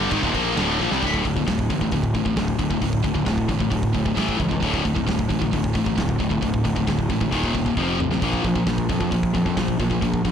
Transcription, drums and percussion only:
0.11 kick, ride
0.23 kick
0.34 kick, ride
0.57 snare, ride
0.80 snare
0.92 snare
1.02 kick, open hi-hat
1.14 kick
1.25 kick, open hi-hat
1.37 kick
1.48 kick, snare, open hi-hat
1.59 kick
1.70 kick, open hi-hat
1.81 kick
1.91 kick, open hi-hat
2.04 kick
2.15 kick, open hi-hat
2.26 kick
2.37 kick, snare, open hi-hat
2.48 kick
2.59 kick, open hi-hat
2.71 kick
2.82 kick, open hi-hat
2.93 kick
3.04 kick, open hi-hat
3.16 kick
3.26 kick, snare, open hi-hat
3.38 kick
3.49 kick, open hi-hat
3.60 kick
3.71 kick, open hi-hat
3.83 kick
3.95 kick, open hi-hat
4.06 kick
4.17 kick, snare, open hi-hat
4.29 kick
4.40 kick, open hi-hat
4.51 kick
4.63 kick, open hi-hat
4.74 kick
4.85 kick, open hi-hat
4.96 kick
5.08 kick, snare, open hi-hat
5.19 kick
5.30 kick, open hi-hat
5.42 kick
5.53 kick, open hi-hat
5.64 kick
5.75 kick, open hi-hat
5.86 kick
5.98 kick, snare, open hi-hat
6.09 kick
6.20 kick, open hi-hat
6.31 kick
6.42 kick, open hi-hat
6.54 kick
6.65 kick, open hi-hat
6.76 kick
6.88 kick, snare, open hi-hat
6.99 kick
7.10 kick, open hi-hat
7.21 kick
7.32 kick, open hi-hat
7.44 kick
7.55 kick, open hi-hat
7.66 kick
7.77 kick
8.00 mid tom
8.12 snare
8.22 kick, open hi-hat
8.33 kick
8.45 kick, open hi-hat
8.56 kick
8.67 kick, snare, open hi-hat
8.78 kick
8.89 kick, open hi-hat
9.01 kick
9.12 kick, open hi-hat
9.23 kick
9.35 kick, open hi-hat
9.46 kick
9.57 kick, snare, open hi-hat
9.68 kick
9.80 kick, open hi-hat
9.91 kick
10.02 kick, open hi-hat
10.14 kick
10.25 kick, open hi-hat

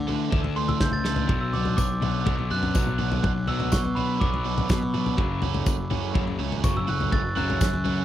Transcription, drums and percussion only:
0.09 floor tom
0.32 kick, floor tom
0.44 floor tom
0.69 floor tom, mid tom
0.80 kick, snare
0.92 mid tom
1.05 snare
1.16 floor tom
1.29 kick, floor tom
1.54 floor tom
1.65 floor tom
1.78 kick, tambourine
2.02 floor tom, mid tom
2.26 kick, floor tom
2.39 floor tom
2.63 floor tom
2.75 kick, tambourine
2.87 mid tom
2.99 mid tom
3.12 floor tom
3.23 kick, floor tom
3.47 floor tom
3.60 floor tom
3.72 kick, snare, tambourine
3.85 floor tom
3.97 floor tom
4.21 kick, floor tom
4.34 floor tom
4.58 floor tom, mid tom
4.69 kick, snare, tambourine
4.83 mid tom
4.94 mid tom
5.06 floor tom
5.18 kick, floor tom
5.42 floor tom
5.54 floor tom
5.66 kick, tambourine
5.91 floor tom, mid tom
6.15 kick, floor tom
6.28 floor tom
6.52 floor tom
6.64 kick, tambourine
6.77 mid tom
6.88 mid tom
7.00 floor tom
7.12 kick, floor tom
7.37 floor tom
7.50 floor tom
7.61 kick, snare, tambourine
7.74 floor tom
7.86 floor tom

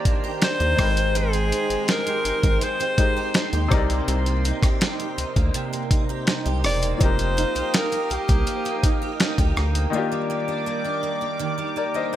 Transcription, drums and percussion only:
0.05 kick, closed hi-hat
0.42 snare, closed hi-hat
0.60 closed hi-hat
0.78 kick, cross-stick, open hi-hat
0.97 closed hi-hat
1.15 closed hi-hat
1.33 closed hi-hat
1.52 closed hi-hat
1.70 closed hi-hat
1.88 snare, closed hi-hat
2.07 closed hi-hat
2.25 closed hi-hat
2.43 kick, closed hi-hat
2.61 closed hi-hat
2.81 closed hi-hat
2.98 kick, closed hi-hat
3.34 snare, closed hi-hat
3.53 closed hi-hat
3.71 kick, cross-stick
3.90 closed hi-hat
4.08 closed hi-hat
4.26 closed hi-hat
4.45 closed hi-hat
4.63 kick, cross-stick, closed hi-hat
4.81 snare, closed hi-hat
5.00 closed hi-hat
5.18 closed hi-hat
5.36 kick, closed hi-hat
5.54 closed hi-hat
5.73 closed hi-hat
5.91 kick, closed hi-hat
6.27 snare, closed hi-hat
6.46 closed hi-hat
6.64 cross-stick, open hi-hat
6.83 closed hi-hat
7.01 kick, closed hi-hat
7.19 closed hi-hat
7.38 closed hi-hat
7.56 closed hi-hat
7.74 snare, closed hi-hat
7.92 closed hi-hat
8.11 closed hi-hat
8.29 kick, closed hi-hat
8.47 closed hi-hat
8.66 closed hi-hat
8.83 kick, closed hi-hat
9.20 snare, closed hi-hat
9.38 kick, closed hi-hat
9.57 cross-stick
9.75 closed hi-hat

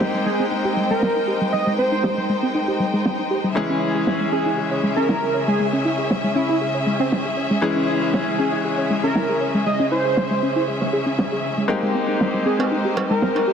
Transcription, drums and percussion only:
0.01 snare
0.26 closed hi-hat
0.77 closed hi-hat
1.03 snare
1.28 closed hi-hat
1.78 closed hi-hat
2.04 snare
2.29 closed hi-hat
2.55 closed hi-hat
2.80 closed hi-hat
3.05 snare
3.31 closed hi-hat
3.82 closed hi-hat
4.07 snare
4.33 closed hi-hat
4.58 closed hi-hat
4.84 closed hi-hat
5.09 snare
5.34 closed hi-hat
5.60 closed hi-hat
5.85 closed hi-hat
6.11 snare
6.36 closed hi-hat
6.61 closed hi-hat
6.87 closed hi-hat
7.12 snare
7.37 closed hi-hat
7.88 closed hi-hat
8.02 closed hi-hat
8.14 snare
8.39 closed hi-hat
8.64 closed hi-hat
8.90 closed hi-hat
9.03 closed hi-hat
9.15 snare, closed hi-hat
9.41 closed hi-hat
9.54 closed hi-hat
9.66 closed hi-hat
9.92 closed hi-hat
10.17 snare
10.43 closed hi-hat
10.68 closed hi-hat
10.82 snare
10.93 closed hi-hat
11.07 closed hi-hat
11.19 snare, closed hi-hat
11.32 closed hi-hat
11.44 closed hi-hat
11.58 closed hi-hat
11.95 closed hi-hat
12.09 closed hi-hat
12.21 snare, closed hi-hat
12.34 closed hi-hat
12.46 closed hi-hat
12.60 cowbell
12.97 closed hi-hat, cowbell
13.22 snare, closed hi-hat
13.36 cowbell
13.48 closed hi-hat

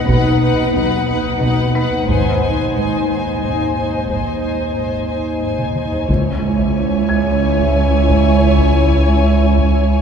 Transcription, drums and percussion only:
0.08 taiko
2.09 taiko
4.09 taiko
5.59 taiko mid
5.76 taiko mid
5.93 taiko low
6.09 taiko
6.59 taiko
7.59 taiko
8.09 taiko
8.58 taiko
9.59 taiko

